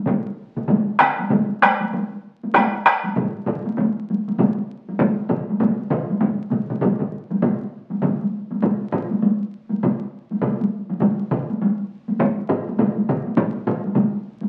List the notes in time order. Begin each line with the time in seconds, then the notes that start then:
0.06 taiko, taiko low-mid, taiko mid, taiko high
0.56 taiko low-mid, taiko mid, taiko high
0.68 taiko low-mid, taiko mid, taiko high
0.99 taiko rim, taiko
1.19 taiko high
1.30 taiko, taiko low-mid, taiko mid, taiko high
1.62 taiko rim, taiko high
1.81 taiko high
1.93 taiko high
2.43 taiko high
2.54 taiko rim, taiko, taiko high
2.86 taiko rim
3.04 taiko high
3.16 taiko low-mid, taiko mid, taiko high
3.47 taiko low-mid, taiko mid
3.65 taiko high
3.78 taiko, taiko high
4.10 taiko high
4.28 taiko high
4.38 taiko low-mid, taiko mid, taiko high
4.89 taiko high
4.99 taiko, taiko low-mid, taiko mid, taiko high
5.29 taiko low-mid, taiko mid
5.49 taiko high
5.60 taiko low-mid, taiko mid, taiko high
5.90 taiko, taiko low-mid, taiko mid
6.09 taiko high
6.21 taiko, taiko low-mid, taiko mid, taiko high
6.51 taiko low-mid, taiko mid, taiko high
6.70 taiko low-mid, taiko mid, taiko high
6.81 taiko low-mid, taiko mid, taiko high
6.99 taiko low-mid, taiko mid
7.31 taiko high
7.42 taiko low-mid, taiko mid, taiko high
7.90 taiko high
8.02 taiko low-mid, taiko mid, taiko high
8.21 taiko high
8.51 taiko high
8.62 taiko low-mid, taiko mid, taiko high
8.92 taiko low-mid, taiko mid
9.11 taiko high
9.22 taiko high
9.70 taiko high
9.83 taiko low-mid, taiko mid, taiko high
10.31 taiko high
10.42 taiko low-mid, taiko mid, taiko high
10.61 taiko high
10.90 taiko high
11.00 taiko low-mid, taiko mid, taiko high
11.31 taiko low-mid, taiko mid
11.50 taiko high
11.62 taiko high
12.08 taiko high
12.19 taiko, taiko high
12.49 taiko low-mid, taiko mid
12.68 taiko high
12.79 taiko low-mid, taiko mid, taiko high
12.96 taiko high
13.09 taiko low-mid, taiko mid
13.26 taiko high
13.37 taiko, taiko low-mid, taiko mid, taiko high
13.67 taiko low-mid, taiko mid
13.84 taiko high
13.95 taiko low-mid, taiko mid, taiko high
14.41 taiko high